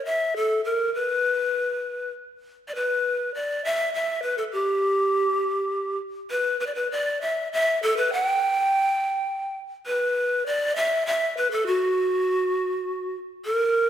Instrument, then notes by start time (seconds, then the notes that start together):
pan flute
0.05 E5
0.36 A4
0.65 A#4
0.94 B4
2.68 D5
2.75 B4
3.35 D5
3.65 E5
3.94 E5
4.23 B4
4.38 A4
4.53 G4
6.31 B4
6.60 B4
6.67 D5
6.75 B4
6.92 D5
7.21 E5
7.53 E5
7.83 A4
7.97 B4
8.13 F#5
8.27 G5
9.87 B4
10.46 D5
10.76 E5
11.06 E5
11.37 B4
11.52 A4
11.67 F#4
13.45 A#4